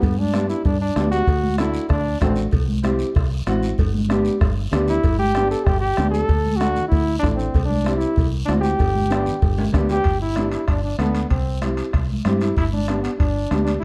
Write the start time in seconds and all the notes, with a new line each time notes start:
Already playing: B3
0.02 G2, bombo low, cowbell, long guiro
0.19 D4, high conga
0.33 B3 D4 G4, bombo rim, high conga, short guiro
0.49 E4, short guiro
0.65 G2 D4, bombo low, cowbell, long guiro
0.82 D4
0.96 D2 B3 D4 G4, bombo rim, high conga, low timbale, short guiro
1.12 F#4, short guiro
1.27 D2, bombo low, cowbell, long guiro
1.43 high conga
1.58 A3 D4 E4 F#4, bombo rim, high conga, short guiro
1.74 short guiro
1.89 D2 D4, bombo low, bombo rim, cowbell, high conga, long guiro
2.20 A1 A3 C4 D4 F#4, bombo low, bombo rim, high conga, low conga, low timbale, short guiro
2.36 short guiro
2.51 C2, bombo low, cowbell, high conga, long guiro
2.68 high conga
2.83 C4 E4 G4, bombo rim, high conga, short guiro
2.99 short guiro
3.15 C2, bombo low, bombo rim, cowbell, high conga, long guiro
3.46 A1 C4 E4 F#4, bombo rim, high conga, short guiro
3.63 short guiro
3.78 G1, bombo low, cowbell, long guiro
3.94 high conga
4.09 B3 D4 G4, bombo rim, high conga, short guiro
4.25 short guiro
4.41 G1, bombo low, bombo rim, cowbell, long guiro
4.72 D2 B3 D4 G4, bombo rim, low conga, short guiro
4.88 E4, low conga, short guiro
5.03 G1, bombo low, cowbell, high conga, long guiro
5.19 G4, high conga
5.35 B3 D4 G4, bombo rim, high conga, short guiro
5.51 A4, short guiro
5.65 G1 G4, bombo low, bombo rim, cowbell, high conga, long guiro
5.81 G4
5.97 D2 B3 D4 G4, bombo rim, high conga, short guiro
6.11 A4, short guiro
6.29 D2, bombo low, cowbell, long guiro
6.46 high conga
6.57 F#4, short guiro
6.61 A3 D4 F#4, bombo rim, high conga
6.76 low conga, short guiro
6.88 D2 E4, bombo low, long guiro
6.92 cowbell
7.20 A1 A3 D4, bombo low, high conga, low conga, short guiro
7.24 E4, bombo rim
7.35 C4
7.39 short guiro
7.54 C2, bombo low, cowbell, high conga, long guiro
7.65 D4
7.70 high conga
7.84 C4 E4 G4, bombo rim, high conga, short guiro
7.97 E4, short guiro
8.16 C2, bombo low, cowbell, high conga, long guiro
8.45 D2 C4 D4 E4 F#4, bombo rim, high conga, short guiro
8.61 G4, short guiro
8.79 G1, bombo low, cowbell, high conga, long guiro
8.95 high conga
9.10 B3 D4 G4, bombo rim, high conga, short guiro
9.26 low conga, short guiro
9.42 G1, bombo low, cowbell, high conga, long guiro
9.58 high conga, high timbale
9.73 D2 B3 D4 G4, bombo low, bombo rim, high conga, low conga, high timbale, short guiro
9.89 G4, low timbale, short guiro
10.04 G1, bombo low, high conga, high timbale, long guiro
10.22 E4
10.36 B3 D4 G4, bombo rim, high conga, high timbale, short guiro
10.52 E4, high timbale, short guiro
10.68 G1 D4, bombo low, bombo rim, high conga, high timbale, long guiro
10.84 D4
10.99 D2 B3 D4 A4, bombo rim, high conga, high timbale, short guiro
11.15 high timbale, short guiro
11.30 C2 C4, bombo low, high conga, high timbale, long guiro
11.62 C4 E4 G4, bombo rim, high conga, high timbale, short guiro
11.77 high timbale, short guiro
11.93 C2, bombo low, bombo rim, high conga, high timbale, long guiro
12.10 high conga
12.25 G2 C4 E4 G4, bombo rim, high conga, high timbale, short guiro
12.41 E4, high timbale, short guiro
12.57 G1 E4, bombo low, high conga, high timbale, long guiro
12.73 D4, high conga
12.87 B3 D4 G4, bombo rim, high conga, high timbale, short guiro
13.03 B3, high timbale, short guiro
13.19 G1 D4, bombo low, high conga, high timbale, long guiro
13.51 D2 B3 D4 G4, bombo rim, high conga, high timbale, short guiro
13.65 D4, high timbale, short guiro
13.80 E4